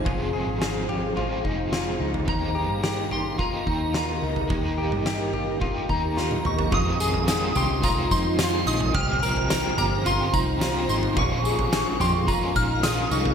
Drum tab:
TB |----------------|----------------|----------------|--x-x-x-x-x-x-x-|
SD |----o-------o---|----o-------o---|----o-------o---|----o-------o---|
T1 |----------------|----------------|-------------o--|----------------|
T2 |----------------|----------------|--------------o-|----------------|
FT |o-----o-o------o|o-----o-o------o|o--o--o-o------o|o--o--o-o------o|
BD |o---------o-----|o-------o-o-----|o-------o-o-----|o-------o-o-----|

TB |--x-x-x-x-x-x-x-|--x-x-x-x-x-x-x-|
SD |----o-------o---|----o-------o---|
T1 |----------------|----------------|
T2 |----------------|----------------|
FT |o--o--o-o------o|o--o--o-o------o|
BD |o---------o-----|o-------o-o-----|